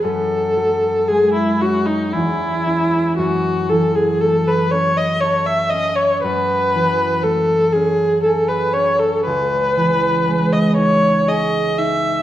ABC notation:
X:1
M:3/4
L:1/16
Q:1/4=59
K:F#dor
V:1 name="Viola"
A4 G E F D E4 | F2 A G A B c d c e d c | B4 A2 G2 A B c A | B4- B d c2 d2 e2 |]
V:2 name="Harp"
[F,,G,CE]2 F,2 G,2 C2 E,,2 [CE]2 | F,,2 E,2 A,2 C2 A2 C2 | F,,2 E,2 A,2 C2 G2 C2 | C,,2 E,2 G,2 D2 G2 D2 |]